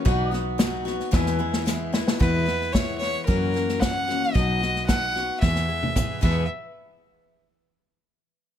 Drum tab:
CC |----------------|----------------|--------------x-|----------------|
HH |----p-------p---|----p-------p---|----p-------p---|----------------|
SD |o-o-o-oooo-oo-oo|o-ooo-o-o-ooo-o-|o-ooo-o-oo------|----------------|
T1 |----------------|----------------|-----------o----|----------------|
T2 |----------------|----------------|------------o---|----------------|
BD |o-------o-------|o---o---o---o---|o---o---o---o-o-|----------------|